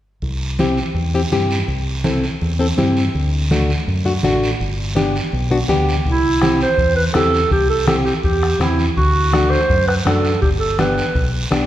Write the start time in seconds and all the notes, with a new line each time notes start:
0.22 C2, high conga, long guiro
0.59 C4 E4 G4, high conga, short guiro
0.77 short guiro
0.94 E2, high conga, long guiro
1.14 C4 E4 G4
1.32 G2 C4 E4 G4, high conga, short guiro
1.51 short guiro
1.68 C2, high conga, long guiro
2.04 C4 E4 A4, high conga, short guiro
2.24 short guiro
2.41 E2, high conga, long guiro
2.59 C4 E4 A4
2.78 G2 C4 E4 G4, high conga, short guiro
2.97 short guiro
3.15 D2, high conga, long guiro
3.51 A3 D4 F#4, high conga, short guiro
3.70 short guiro
3.87 F#2, high conga, long guiro
4.05 A3 D4 F#4
4.23 A1 A3 D4 F#4, high conga, short guiro
4.43 short guiro
4.60 G1, high conga, long guiro
4.95 B3 D4 G4, high conga, short guiro
5.16 short guiro
5.32 B1, high conga, long guiro
5.51 B3 D4 F#4
5.68 D2 B3 D4 G4, high conga, short guiro
5.89 short guiro
6.06 C2 E4, bombo low, high conga, long guiro
6.42 C4 E4 G4, bombo rim, high conga, short guiro
6.61 C5, short guiro
6.78 E2, bombo low, high conga, long guiro
6.96 B4
7.14 E2 C4 E4 G4 A4, bombo rim, high conga, short guiro
7.34 short guiro
7.51 C2 G4, bombo low, high conga, long guiro
7.70 A4
7.87 C4 E4 G4 A4, bombo rim, high conga, short guiro
8.05 G4, short guiro
8.23 E2 G4, bombo low, high conga, long guiro
8.43 bombo rim
8.59 E2 C4 E4 G4, bombo rim, high conga, short guiro
8.79 short guiro
8.97 D2 F#4, bombo low, high conga, long guiro
9.33 A3 D4 F#4, bombo rim, high conga, short guiro
9.51 C5, short guiro
9.70 F#2, bombo low, high conga, long guiro
9.87 B4, bombo rim
10.05 F#2 A3 D4 F#4 A4, bombo rim, high conga, short guiro
10.25 short guiro
10.41 G1 G4, bombo low, high conga, long guiro
10.60 A4
10.79 B3 D4 G4 B4, bombo rim, high conga, short guiro
10.98 short guiro
11.15 B1, bombo low, high conga, long guiro
11.51 B1 B3 D4 G4, bombo rim, high conga, short guiro